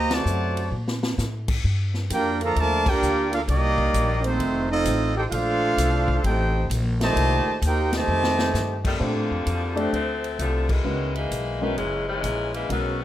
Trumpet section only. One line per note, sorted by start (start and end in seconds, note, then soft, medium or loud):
0.00 0.11 G4 medium
0.00 0.11 C5 medium
0.00 0.12 D#5 loud
0.00 0.12 A#5 loud
0.13 0.73 F#4 medium
0.13 0.73 C5 medium
0.13 0.73 D5 medium
0.13 0.73 A5 loud
2.13 2.40 F4 medium
2.13 2.40 A#4 medium
2.13 2.40 D5 medium
2.13 2.39 G5 loud
2.44 2.57 F4 medium
2.44 2.57 A4 medium
2.44 2.56 D5 medium
2.44 2.56 A#5 loud
2.59 2.88 F4 medium
2.59 2.87 A#4 loud
2.59 2.87 D5 medium
2.59 2.88 A5 loud
2.88 3.33 F4 loud
2.88 3.33 A#4 medium
2.88 3.33 D5 loud
2.88 3.33 G5 loud
3.34 3.40 D4 medium
3.34 3.41 A4 medium
3.34 3.41 A#4 medium
3.34 3.41 F5 medium
3.49 4.21 A#3 medium
3.49 4.21 G4 medium
3.49 4.21 D5 loud
3.49 4.21 D#5 loud
4.25 4.70 A3 medium
4.25 4.70 D#4 medium
4.25 4.71 F4 medium
4.25 4.71 C5 medium
4.72 5.13 C4 medium
4.72 5.14 F4 medium
4.72 5.14 A4 medium
4.72 5.14 D#5 loud
5.17 5.24 D#4 medium
5.17 5.24 A4 medium
5.17 5.24 C5 medium
5.17 5.24 G5 medium
5.31 6.19 D4 loud
5.31 6.19 A4 loud
5.31 6.20 C5 medium
5.31 6.19 F5 loud
6.25 6.67 D#4 medium
6.25 6.67 A4 medium
6.25 6.67 C5 medium
6.25 6.67 G5 loud
7.02 7.59 G4 loud
7.02 7.59 C5 loud
7.02 7.59 D#5 loud
7.02 7.59 A5 loud
7.66 7.94 D#4 medium
7.66 7.94 A#4 medium
7.66 7.94 C5 medium
7.66 7.94 G5 loud
7.95 8.82 G4 medium
7.95 8.82 C5 medium
7.95 8.82 D#5 medium
7.95 8.82 A5 loud